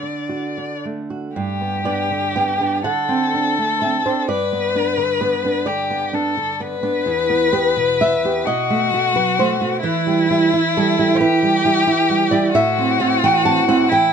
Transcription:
Already playing: D3 D5
0.03 D4
0.29 F#4
0.58 D4
0.85 A3
1.10 F#4
1.36 G2 G4
1.61 B3
1.85 B3 D4 D5
2.11 D3
2.36 B3 G5
2.61 B3 D4
2.84 D3 A4 F#5
3.09 C4
3.34 C4 D4
3.58 A3
3.82 C4 E5
4.06 C4 D4 C5
4.28 G2 B4 D5
4.53 B3
4.75 B3 D4
4.97 D3
5.21 B3 B4
5.45 B3 D4
5.66 D3 G4 D5
5.90 B3
6.13 B3 D4 A4
6.37 D3
6.60 B3 B4
6.83 B3 D4
7.06 E2
7.29 B3
7.52 B3 G4 B4
7.77 B2
8.00 B3 E5
8.24 B3 G4
8.46 B2 F#4 D#5
8.70 A3
8.94 A3 F#4
9.16 F#3 B4
9.39 A3 C5
9.60 A3 F#4
9.81 E3 E4 B4
10.07 G3
10.30 G3 E4
10.53 E4
10.77 G3 A4
10.99 G3 E4
11.15 G4 C5
11.21 E4 B4
11.43 G3
11.65 G3 E4
11.87 E4
12.10 G3
12.31 G3 E4 D5
12.52 A2 F#4 E5
12.78 C4
13.00 C4 E4 F#5
13.24 E3 G5
13.45 C4 A5
13.68 C4 E4 F#5
13.89 E3 E4 G5

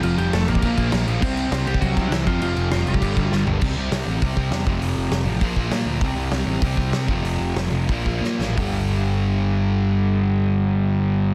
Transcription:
Already playing: F2 C3 F3
0.03 F1 F3 F4, crash
0.18 F1 G3 G4, crash
0.32 F1 F2 C3 F3 A3 A4, snare, crash
0.48 A1 A#3 A#4, crash
0.55 kick
0.62 A#1 A#2 F3, kick, crash
0.66 A#3
0.78 A#1, kick, crash
0.92 A#1, snare, crash
1.07 A#1 A#2 F3 A#3, crash
1.22 C2 C3 G3 C4 C5, kick, crash
1.37 crash
1.51 C2 C4 C5, snare, crash
1.66 C2 C3 G3 C4 G4, crash
1.74 kick
1.81 C2 F#3 F#4, kick, crash
1.97 C2 C3 G3 C4, kick, crash
2.08 C2 C3 D4
2.12 E3 G3 C4 E4, snare, crash
2.25 F1 F2 C3 F3 F4, kick, crash
2.30 F3
2.41 F1 F3 F4, crash
2.56 F1, crash
2.71 F1 F2 C3 F3 F4, snare, crash
2.87 F1 G3 G4, crash
2.94 kick
3.00 G1 G2 D3 G3, kick, crash
3.17 G1, kick, crash
3.31 G1 F4, snare
3.46 G1 G2 D3 G3, floor tom
3.61 C2 C3 G3 C4, kick, crash
3.77 C2
3.91 C2, snare, open hi-hat
4.06 A1
4.21 C2 C3 G3 C4, kick, open hi-hat
4.37 C2, kick
4.51 E2, snare, open hi-hat
4.65 F1 F2 C3 F3, kick
4.81 F1, open hi-hat
4.97 F1
5.11 F1, snare, open hi-hat
5.25 A1 F2 C3 F3
5.40 A#1 A#2 F3 A#3, kick, open hi-hat
5.56 A#1, kick
5.70 A#2, snare, open hi-hat
5.85 D2
6.00 C2 C3 G3, kick, open hi-hat
6.04 C4
6.16 C2
6.31 C2, snare, open hi-hat
6.46 A1
6.60 C2 C3 G3 C4, kick, open hi-hat
6.77 C2, kick
6.92 C3, snare, open hi-hat
7.08 F1 F2 C3 F3, kick
7.23 F1, open hi-hat
7.39 F1
7.55 F1, snare, open hi-hat
7.71 F1 F2 C3 F3
7.88 A#1 A#2 F3 A#3, kick, open hi-hat
8.05 A#1, kick
8.21 A#2, snare
8.39 A1, snare
8.56 G1 G2 D3 G3, kick, floor tom, open hi-hat

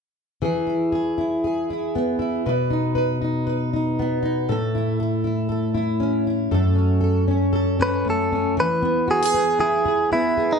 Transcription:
0.42 E3 G#4
0.67 E4
0.92 G#4
1.18 E4
1.44 G#4
1.70 E4
1.95 B3
2.19 E4
2.46 B2 B4
2.70 D#4
2.95 B4
3.22 D#4
3.47 B4
3.73 D#4
3.99 B3
4.23 D#4
4.49 A2 A4
4.75 E4
5.00 A4
5.24 E4
5.49 A4
5.74 E4
6.00 C#4
6.27 E4
6.51 F#2 A4
6.75 C#4
7.01 A4
7.28 C#4
7.53 A4
7.79 C#4 B4
8.05 A3
8.10 A4
8.32 C#4
8.57 E3 B4
8.82 B3
9.08 F#4 G#4
9.22 G#4
9.34 B3
9.59 E4 G#4
9.85 G#4
10.12 B3 E4
10.37 G#4
10.52 D#4

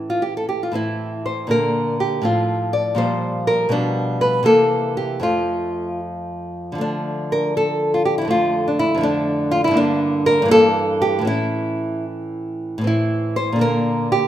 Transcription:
Already playing: A2 E3 C#4
0.10 F4
0.22 G4
0.37 A4
0.49 G4
0.63 F4
0.72 A2 E3 C4 E4
1.26 C5
1.47 A#2 D3 A#3 A#4
2.00 G4
2.22 A2 F3 C4 F4
2.73 D5
2.95 A#2 F3 G3 C5
3.47 A#4
3.69 B2 F3 G3 D4
4.21 B4
4.43 C3 E3 A#3 A4
4.97 G4
5.20 F2 F3 A3 F4
6.72 D3 F3
6.78 A3 D4
7.32 A#4
7.57 A4
7.94 F4
8.05 G4
8.18 F2 E4
8.25 D3 A3
8.30 F4
8.68 D4
8.79 E4
8.95 F2 D3
9.01 A3 D4
9.51 F4
9.64 G2 E4
9.71 D3 A#3
9.77 D4
10.26 A#4
10.42 G2 E3
10.48 A#3 A4
11.02 G4
11.19 A2 E3
11.25 C#4 E4
12.78 A2 E3
12.84 C4 E4
13.36 C5
13.53 A#2 D3
13.59 A#3 A#4
14.12 G4

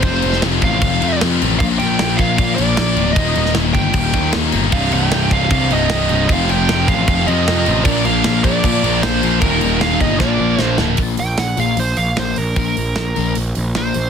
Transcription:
0.02 F1 F2 C3 F3 A3 C4 F4 C5, kick, crash
0.22 F1, crash
0.33 snare
0.42 F1, snare, crash
0.62 A1 F5, kick, crash
0.82 F1, kick, crash
1.01 F2 C3 F3, crash
1.21 F2 C3 F3, snare, crash
1.42 A1 F2 C3 F3 A3 C4 F4, crash
1.59 A#1 A#2 F3 A#3 D4 F4 A#4 F5, kick, crash
1.79 A#1 G5, crash
1.99 A#1, snare, crash
2.17 A#1 F5, kick, crash
2.37 A#2 F5, kick, crash
2.55 A#1 A#2 F3 A#3 D5, crash
2.76 A#1 A#2 F3 A#3, snare, crash
2.96 D1 A#2 F3 A#3 D4 F4 A#4, crash
3.12 D#2 A#2 D#5, kick, crash
3.17 D#1 A#2 D#3 G3 A#3 D#4
3.35 D#1, crash
3.46 snare
3.54 D#1, snare, crash
3.74 G1 G5, kick, crash
3.93 D#1, kick, crash
4.14 D#2 A#2 D#3, kick, crash
4.33 D#2 A#2, snare, crash
4.37 D#3
4.52 G1 D#2 A#2 D#3 G3 A#3 D#4, crash
4.71 C1 C2 G2 C3 G3 D#4 F5, kick, crash
4.92 C1 G5, crash
5.11 C1, snare, crash
5.31 C1 F5, kick, crash
5.50 C2 F5, kick, crash
5.71 C1 C2 G2 C3 D#5, crash
5.89 C1 C2 G2 C3, snare, crash
6.09 C1 C2 G2 C3 G3 D#4, crash
6.28 F1 F2 C3 F3 A3 C4 F4, kick, crash
6.32 F3 F5
6.49 F1 G5, crash
6.69 F1, snare, crash
6.88 A1 F5, kick, crash
7.08 F1 F5, kick, crash
7.26 F2 C3 F3 D#5, crash
7.47 F2 C3 F3, snare, crash
7.66 A1 F2 C3 F3 A3 C4 F4, crash
7.84 A#1 A#2 F3 A#3 D4 F4 D5, kick, crash
7.88 A#4
8.05 A#1 F5, crash
8.24 A#1, snare, crash
8.44 A#1 D5, kick, crash
8.64 A#2, kick, crash
8.83 A#1 A#2 F3 A#3, crash
9.02 A#1 A#2 F3 A#3 C5, snare, crash
9.23 A#1 A#2 F3 A#3 D4 F4 A#4, crash
9.41 D#1 D#2 A#2 D#3 G3 A#3 D#4 A#4, kick, crash
9.61 D#1, crash
9.81 D#1 F5, snare, crash
10.01 G1 D#5, kick, crash
10.20 A#1 A#2 F3 A#3 D4 F4 A#4 D5, kick, snare
10.40 A#1
10.59 A#1, snare
10.63 C5
10.78 D1, snare
10.97 A#1 A#2 F3 A#3, kick, open hi-hat
11.17 A#1 G5, open hi-hat
11.37 A#1 F#5, snare, open hi-hat
11.57 A#1 A#2 F3 A#3 F5, open hi-hat
11.77 A#1 C5, open hi-hat
11.97 A#1 F5, open hi-hat
12.16 A#1 A#2 F3 A#3 C5, snare, open hi-hat
12.36 A#1 A#4, open hi-hat
12.56 A#1 A#2 F3 A#3 A#4, kick, open hi-hat
12.77 A#1, open hi-hat
12.96 A#1, snare, open hi-hat
13.16 A#1 A#2 F3 A#3, open hi-hat
13.35 A#1, open hi-hat
13.55 A#1, open hi-hat
13.75 A#1 A#2 F3 A#3 C5, snare, open hi-hat
13.94 A#1, open hi-hat

